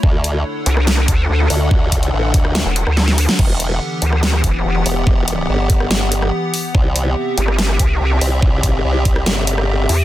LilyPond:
<<
  \new Staff \with { instrumentName = "Ambient pad" } { \time 4/4 \key e \minor \tempo 4 = 143 <d d' a' fis''>1~ | <d d' a' fis''>1 | <e b g' fis''>1~ | <e b g' fis''>1 |
<c c' g' e''>1~ | <c c' g' e''>1 | }
  \new Staff \with { instrumentName = "Wobble bass" } { \clef bass \time 4/4 \key e \minor d,4 r2 r8 d,8 | d,4 a,,8 d,8 r2 | e,,4 r2 r8 e,,8 | e,,4 g,,2 r4 |
c,4 r2 r8 c,8 | c,4 c,4 g,,4. r8 | }
  \new Staff \with { instrumentName = "Wobble bass" } { \clef bass \time 4/4 \key e \minor r4. c,4 d,8 d,8 r8 | r2 r16 e,,8 d,4 r16 | r4. d,4 e,,8 e,,8 r8 | r1 |
r4. g,,4 c,8 c,8 r8 | r2. r8 e,8 | }
  \new DrumStaff \with { instrumentName = "Drums" } \drummode { \time 4/4 bd8 hh8 r8 hh16 ss16 sn16 ss16 <hh bd>8 r8 hho8 | bd8 <hh bd>16 hh16 r8 <hh bd>16 ss16 sn8 hh16 ss16 sn16 sn16 hho16 sn16 | <cymc bd>8 hh8 r8 hh16 ss16 sn16 ss16 <hh bd>8 r8 hho8 | bd8 hh8 r8 <hh bd>16 ss16 sn8 hh16 ss16 r8 hho8 |
bd8 hh8 r8 hh16 ss16 sn16 ss16 <hh bd>8 r8 hho8 | bd8 <hh bd>8 r8 <hh bd>16 ss16 sn8 hh16 ss16 r8 hho8 | }
>>